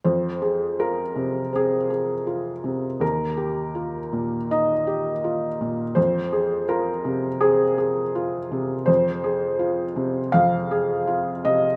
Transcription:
\new Staff \with { instrumentName = "Felt piano" } { \time 4/4 \key f \minor \tempo 4 = 82 << { c''4 bes'4 aes'2 | bes'2 ees''2 | c''4 bes'4 aes'2 | c''2 f''4. ees''8 | } \\ { f,8 aes'8 f'8 c8 c'8 aes'8 f'8 c8 | ees,8 g'8 f'8 bes,8 ees'8 g'8 f'8 bes,8 | f,8 aes'8 f'8 c8 c'8 aes'8 f'8 c8 | f,8 aes'8 f'8 c8 f,8 aes'8 f'8 c8 | } >> }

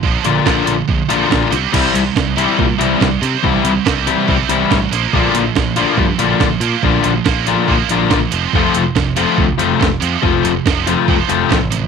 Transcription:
<<
  \new Staff \with { instrumentName = "Overdriven electric guitar" } { \time 4/4 \key c \mixolydian \tempo 4 = 141 r8 <d bes d' f'>8 <d bes d' f'>8 r4 <d bes d' f'>8 <d bes d' f'>8 r8 | <e g c' e'>8 r4 <e g c' e'>8 r8 <e g c' e'>8 r4 | <e g c' e'>8 r4 <e g c' e'>8 r8 <e g c' e'>8 r4 | <d bes d' f'>8 r4 <d bes d' f'>8 r8 <d bes d' f'>8 r4 |
<d bes d' f'>8 r4 <d bes d' f'>8 r8 <d bes d' f'>8 r4 | <f a c' f'>8 r4 <f a c' f'>8 r8 <f a c' f'>8 r4 | <f a c' f'>8 r4 <f a c' f'>8 r8 <f a c' f'>8 r4 | }
  \new Staff \with { instrumentName = "Distorted electric guitar" } { \clef bass \time 4/4 \key c \mixolydian <bes, d f>8 <bes, d>8 <bes, d f>8 <bes, d>8 <bes, d>8 <bes, d f>8 <bes, d>8 <c g c'>8 | <c g c'>8 <c g>8 <c g>8 <c g c'>8 <c g>8 <c g>8 <c g>8 <c g c'>8 | <c g>8 <c g>8 <c g c'>8 <c g>8 <c g c'>8 <c g>8 <c g>8 <bes, f bes>8 | <bes, f bes>8 <bes, f>8 <bes, f>8 <bes, f bes>8 <bes, f>8 <bes, f>8 <bes, f>8 <bes, f bes>8 |
<bes, f>8 <bes, f>8 <bes, f bes>8 <bes, f>8 <bes, f bes>8 <bes, f>8 <bes, f>8 <f, c f>8 | <f, c f>8 <f, c>8 <f, c>8 <f, c f>8 <f, c>8 <f, c>8 <f, c>8 <f, c f>8 | <f, c>8 <f, c>8 <f, c f>8 <f, c>8 <f, c f>8 <f, c>8 <f, c>8 <f, c>8 | }
  \new Staff \with { instrumentName = "Picked electric bass" } { \clef bass \time 4/4 \key c \mixolydian bes,,8 bes,,8 bes,,8 bes,,8 bes,,8 bes,,8 bes,,8 c,8 | c,8 c,8 c,4 bes,8 c,8 c,8 c8 | c,8 c,8 c,4 c,8 c,8 a,,8 bes,,8 | bes,,8 bes,,8 bes,,4 g,8 bes,,8 bes,,8 bes,8 |
bes,,8 bes,,8 bes,,4 bes,,8 bes,,8 bes,,8 f,,8 | f,,8 f,,8 f,,4 d,8 f,,8 f,,8 f,8 | f,,8 f,,8 f,,4 f,,8 f,,8 a,,4 | }
  \new DrumStaff \with { instrumentName = "Drums" } \drummode { \time 4/4 bd8 hh8 <bd sn>8 hh8 bd8 hh8 <bd sn>8 <hh sn>8 | <cymc bd>8 hh8 <bd sn>8 hh8 bd8 hh8 <bd sn>8 <hh sn>8 | bd8 hh8 <bd sn>8 hh8 bd8 hh8 <bd sn>8 <hh sn>8 | bd8 hh8 <bd sn>8 hh8 bd8 hh8 <bd sn>8 hh8 |
bd8 hh8 <bd sn>8 hh8 bd8 hh8 <bd sn>8 hh8 | bd8 hh8 <bd sn>8 hh8 bd8 hh8 <bd sn>8 hh8 | bd8 hh8 <bd sn>8 hh8 bd8 hh8 <bd sn>8 hh8 | }
>>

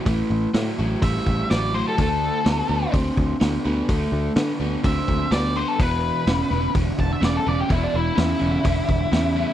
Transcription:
<<
  \new Staff \with { instrumentName = "Lead electric guitar" } { \time 4/4 \key d \mixolydian \tempo 4 = 126 r2 e''4 d''8 c''16 a'16 | a'2 r2 | r2 e''4 d''8 c''16 a'16 | b'2 r8 a''16 e''16 d''16 a'16 d''16 g'16 |
e'16 d'16 e'8 e'2. | }
  \new Staff \with { instrumentName = "Overdriven electric guitar" } { \clef bass \time 4/4 \key d \mixolydian <a, e>4 <a, fis>8 <a, fis>8 <a, g>4 <a, fis>8 <a, fis>8 | <d a>4 <d b>8 <d b>8 <d c'>4 <d b>8 <d b>8 | <d a>4 <d b>8 <d b>8 <d c'>4 <d b>8 <d b>8 | <e, b,>4 <e, cis>8 <e, cis>8 <e, d>4 <e, cis>8 <e, cis>8 |
<e, b,>4 <e, cis>8 <e, cis>8 <e, d>4 <e, cis>8 <e, cis>8 | }
  \new Staff \with { instrumentName = "Picked electric bass" } { \clef bass \time 4/4 \key d \mixolydian a,,8 a,,8 a,8 a,,8 a,,8 a,,8 a,,4 | d,4 d,8 d,8 d,8 d,8 d,8 d,8 | d,8 d,8 d8 d,8 d,8 d,8 d,4 | e,,4 e,,8 e,,8 e,,8 e,,8 e,,8 e,,8 |
e,,8 e,,8 e,8 e,,8 e,,8 e,,8 e,4 | }
  \new DrumStaff \with { instrumentName = "Drums" } \drummode { \time 4/4 <hho bd>4 <hho sn>4 <hho bd>8 bd8 <hho sn>4 | <hho bd>4 <hho sn>4 <hho bd>8 bd8 <hho sn>4 | <hho bd>4 <hho sn>4 <hho bd>8 bd8 <hho sn>4 | <hho bd>4 <hho sn>4 <hho bd>8 bd8 <hho sn>4 |
<hho bd>4 <hho sn>4 <hho bd>8 bd8 <hho sn>4 | }
>>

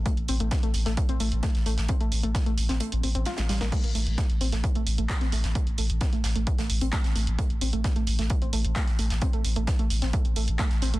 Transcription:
<<
  \new Staff \with { instrumentName = "Synth arpeggio sound" } { \time 4/4 \key a \minor \tempo 4 = 131 a16 r16 c'16 a16 r16 a16 r16 a16 r16 c'16 a16 r16 a16 r16 a16 r16 | c'16 a16 r16 a16 r16 a16 r16 c'16 a16 r16 c'16 c'16 f'16 r16 g16 bes16 | a16 r16 a16 r16 a16 r16 c'16 a16 r16 a16 r16 a16 r16 c'16 a16 r16 | a16 r16 a16 r16 c'16 a16 r16 a16 r16 a16 r16 c'16 a16 r16 a16 r16 |
a16 r16 c'16 a16 r16 a16 r16 a16 r16 c'16 a16 r16 a16 r16 a16 r16 | c'16 a16 r16 a16 r16 a16 r16 c'16 a16 r16 a16 r16 a16 r16 c'16 a16 | }
  \new Staff \with { instrumentName = "Sub bass" } { \clef bass \time 4/4 \key a \minor r16 a,,16 a,,16 a,,16 r16 a,,16 a,,16 a,,16 r16 a,,16 a,,16 a,,16 r16 a,,16 a,,16 a,,16 | r16 a,,16 a,,16 a,,16 r16 a,,16 a,,16 a,,16 r16 a,,16 a,,16 a,,16 r16 a,,16 a,,16 a,,16 | r16 a,,16 a,,16 a,,16 r16 a,,16 a,,16 a,,16 r16 a,,16 a,,16 a,,16 r16 a,,16 a,,16 a,,16 | r16 a,,16 a,,16 a,,16 r16 a,,16 a,,16 a,,16 r16 a,,16 a,,16 a,,16 r16 a,,16 a,,16 a,,16 |
r16 a,,16 a,,16 a,,16 r16 a,,16 a,,16 a,,16 r16 a,,16 a,,16 a,,16 r16 a,,16 a,,16 a,,16 | r16 a,,16 a,,16 a,,16 r16 a,,16 a,,16 a,,16 r16 a,,16 a,,16 a,,16 r16 a,,16 a,,16 a,,16 | }
  \new DrumStaff \with { instrumentName = "Drums" } \drummode { \time 4/4 <hh bd>16 hh16 <hh hho>16 hh16 <hh bd sn>16 hh16 <hh hho>16 <hh sn>16 <hh bd>16 hh16 <hh hho>16 hh16 <hh bd sn>16 <hh sn>16 <hh hho>16 <hh sn>16 | <hh bd>16 hh16 <hh hho>16 hh16 <hh bd sn>16 hh16 <hh hho>16 <hh sn>16 hh16 hh16 hho16 hh16 <hh sn>16 <hh sn>16 <hh hho sn>16 <hh sn>16 | <cymc hh bd>16 hh16 <hh hho>16 hh16 <hh bd sn>16 hh16 <hh hho>16 <hh sn>16 <hh bd>16 hh16 <hh hho>16 hh16 <hc hh bd sn>16 <hh sn>16 <hh hho>16 <hh sn>16 | <hh bd>16 hh16 <hh hho>16 hh16 <hh bd sn>16 hh16 <hh hho sn>16 hh16 <hh bd>16 <hh sn>16 hho16 hh16 <hc hh bd sn>16 <hh sn>16 <hh hho>16 hh16 |
<hh bd>16 hh16 <hh hho>16 hh16 <hh bd sn>16 hh16 <hh hho>16 <hh sn>16 <hh bd>16 hh16 <hh hho>16 hh16 <hc hh bd sn>16 <hh sn>16 <hh hho>16 <hh sn>16 | <hh bd>16 hh16 <hh hho>16 hh16 <hh bd sn>16 hh16 <hh hho>16 <hh sn>16 <hh bd>16 hh16 <hh hho>16 hh16 <hc hh bd sn>16 <hh sn>16 <hh hho>16 hh16 | }
>>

